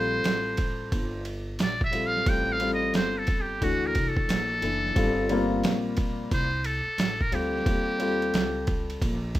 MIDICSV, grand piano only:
0, 0, Header, 1, 2, 480
1, 0, Start_track
1, 0, Tempo, 674157
1, 1616, Time_signature, 4, 2, 24, 8
1, 6690, End_track
2, 0, Start_track
2, 0, Title_t, "Grand piano"
2, 0, Program_c, 0, 0
2, 0, Note_on_c, 0, 55, 76
2, 0, Note_on_c, 0, 60, 71
2, 0, Note_on_c, 0, 65, 70
2, 0, Note_on_c, 0, 69, 85
2, 742, Note_off_c, 0, 55, 0
2, 744, Note_off_c, 0, 60, 0
2, 747, Note_off_c, 0, 65, 0
2, 749, Note_off_c, 0, 69, 0
2, 1363, Note_on_c, 0, 55, 63
2, 1369, Note_on_c, 0, 60, 61
2, 1373, Note_on_c, 0, 65, 64
2, 1380, Note_on_c, 0, 69, 71
2, 1580, Note_off_c, 0, 55, 0
2, 1583, Note_off_c, 0, 60, 0
2, 1585, Note_off_c, 0, 65, 0
2, 1588, Note_off_c, 0, 69, 0
2, 1608, Note_on_c, 0, 55, 71
2, 1611, Note_on_c, 0, 60, 65
2, 1617, Note_on_c, 0, 65, 65
2, 1623, Note_on_c, 0, 69, 77
2, 1822, Note_off_c, 0, 55, 0
2, 1824, Note_off_c, 0, 60, 0
2, 1827, Note_off_c, 0, 65, 0
2, 1830, Note_off_c, 0, 69, 0
2, 1848, Note_on_c, 0, 55, 74
2, 1853, Note_on_c, 0, 60, 70
2, 1858, Note_on_c, 0, 65, 69
2, 1863, Note_on_c, 0, 69, 88
2, 2568, Note_on_c, 0, 52, 80
2, 2572, Note_off_c, 0, 55, 0
2, 2572, Note_on_c, 0, 57, 72
2, 2574, Note_off_c, 0, 60, 0
2, 2577, Note_off_c, 0, 65, 0
2, 2577, Note_on_c, 0, 62, 74
2, 2579, Note_off_c, 0, 69, 0
2, 2582, Note_on_c, 0, 66, 88
2, 3199, Note_off_c, 0, 52, 0
2, 3201, Note_off_c, 0, 57, 0
2, 3204, Note_off_c, 0, 62, 0
2, 3206, Note_off_c, 0, 66, 0
2, 3285, Note_on_c, 0, 52, 70
2, 3294, Note_on_c, 0, 57, 62
2, 3298, Note_on_c, 0, 62, 61
2, 3303, Note_on_c, 0, 64, 79
2, 3501, Note_off_c, 0, 52, 0
2, 3505, Note_off_c, 0, 57, 0
2, 3507, Note_off_c, 0, 62, 0
2, 3510, Note_off_c, 0, 64, 0
2, 3527, Note_on_c, 0, 55, 89
2, 3531, Note_on_c, 0, 60, 76
2, 3535, Note_on_c, 0, 65, 83
2, 3539, Note_on_c, 0, 69, 95
2, 3742, Note_off_c, 0, 55, 0
2, 3744, Note_off_c, 0, 60, 0
2, 3746, Note_off_c, 0, 65, 0
2, 3748, Note_off_c, 0, 69, 0
2, 3770, Note_on_c, 0, 55, 95
2, 3773, Note_on_c, 0, 60, 83
2, 3779, Note_on_c, 0, 65, 85
2, 3783, Note_on_c, 0, 58, 104
2, 4584, Note_off_c, 0, 55, 0
2, 4586, Note_off_c, 0, 60, 0
2, 4589, Note_off_c, 0, 65, 0
2, 4591, Note_off_c, 0, 58, 0
2, 5209, Note_on_c, 0, 55, 67
2, 5213, Note_on_c, 0, 60, 64
2, 5218, Note_on_c, 0, 65, 64
2, 5223, Note_on_c, 0, 69, 78
2, 5423, Note_off_c, 0, 55, 0
2, 5425, Note_off_c, 0, 60, 0
2, 5428, Note_off_c, 0, 65, 0
2, 5430, Note_off_c, 0, 69, 0
2, 5446, Note_on_c, 0, 55, 75
2, 5450, Note_on_c, 0, 60, 68
2, 5456, Note_on_c, 0, 65, 65
2, 5462, Note_on_c, 0, 69, 83
2, 5662, Note_off_c, 0, 55, 0
2, 5664, Note_off_c, 0, 60, 0
2, 5667, Note_off_c, 0, 65, 0
2, 5669, Note_off_c, 0, 69, 0
2, 5686, Note_on_c, 0, 55, 81
2, 5690, Note_on_c, 0, 60, 75
2, 5697, Note_on_c, 0, 65, 73
2, 5702, Note_on_c, 0, 69, 88
2, 6502, Note_off_c, 0, 55, 0
2, 6504, Note_off_c, 0, 60, 0
2, 6508, Note_off_c, 0, 65, 0
2, 6510, Note_off_c, 0, 69, 0
2, 6690, End_track
0, 0, End_of_file